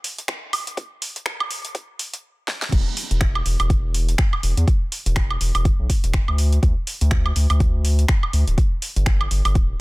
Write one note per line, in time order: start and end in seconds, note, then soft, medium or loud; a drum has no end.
0.04 open hi-hat loud
0.18 closed hi-hat medium
0.28 finger snap loud
0.28 kick loud
0.28 closed hi-hat medium
0.53 open hi-hat loud
0.53 high woodblock medium
0.67 closed hi-hat medium
0.77 kick loud
0.77 closed hi-hat medium
1.02 open hi-hat loud
1.16 closed hi-hat medium
1.26 finger snap loud
1.26 kick loud
1.26 closed hi-hat medium
1.40 high woodblock medium
1.51 open hi-hat loud
1.65 closed hi-hat medium
1.75 kick loud
1.75 closed hi-hat medium
1.99 open hi-hat loud
2.13 closed hi-hat medium
2.48 snare medium
2.62 snare medium
2.72 2.83 E1 loud
2.72 kick loud
2.72 closed hi-hat medium
2.72 crash loud
2.97 open hi-hat loud
3.11 3.41 E1 loud
3.11 closed hi-hat medium
3.21 finger snap loud
3.21 kick loud
3.21 closed hi-hat medium
3.35 high woodblock medium
3.46 3.56 E1 loud
3.46 open hi-hat loud
3.60 4.15 E1 medium
3.60 closed hi-hat medium
3.60 high woodblock medium
3.70 kick loud
3.70 closed hi-hat medium
3.94 open hi-hat loud
4.09 closed hi-hat medium
4.18 finger snap loud
4.18 kick loud
4.18 closed hi-hat medium
4.33 high woodblock medium
4.43 4.54 E1 medium
4.43 open hi-hat loud
4.57 4.65 E2 medium
4.57 closed hi-hat medium
4.68 kick loud
4.68 closed hi-hat medium
4.92 open hi-hat loud
5.06 5.37 E1 loud
5.06 closed hi-hat medium
5.16 finger snap loud
5.16 kick loud
5.16 closed hi-hat medium
5.31 high woodblock medium
5.41 5.51 E1 loud
5.41 open hi-hat loud
5.55 5.72 E1 medium
5.55 closed hi-hat medium
5.55 high woodblock medium
5.65 kick loud
5.65 closed hi-hat medium
5.79 5.87 B1 medium
5.90 kick medium
5.90 open hi-hat loud
6.04 6.21 E1 loud
6.04 closed hi-hat medium
6.14 finger snap loud
6.14 kick loud
6.14 closed hi-hat medium
6.28 6.59 D2 loud
6.28 high woodblock medium
6.38 open hi-hat loud
6.53 closed hi-hat medium
6.63 6.73 D2 loud
6.63 kick loud
6.63 closed hi-hat medium
6.87 open hi-hat loud
7.01 7.32 D2 loud
7.01 closed hi-hat medium
7.11 finger snap loud
7.11 kick loud
7.11 closed hi-hat medium
7.26 high woodblock medium
7.36 7.46 D2 loud
7.36 open hi-hat loud
7.50 8.05 D2 medium
7.50 closed hi-hat medium
7.50 high woodblock medium
7.60 kick loud
7.60 closed hi-hat medium
7.85 open hi-hat loud
7.99 closed hi-hat medium
8.08 finger snap loud
8.08 kick loud
8.08 closed hi-hat medium
8.23 high woodblock medium
8.33 8.44 D2 medium
8.33 open hi-hat loud
8.48 8.55 D1 medium
8.48 closed hi-hat medium
8.58 kick loud
8.58 closed hi-hat medium
8.82 open hi-hat loud
8.96 9.27 G1 loud
8.96 closed hi-hat medium
9.06 finger snap loud
9.06 kick loud
9.06 closed hi-hat medium
9.21 high woodblock medium
9.31 9.42 G1 loud
9.31 open hi-hat loud
9.45 9.55 G1 medium
9.45 closed hi-hat medium
9.45 high woodblock medium
9.55 9.74 D1 loud
9.55 kick loud
9.55 closed hi-hat medium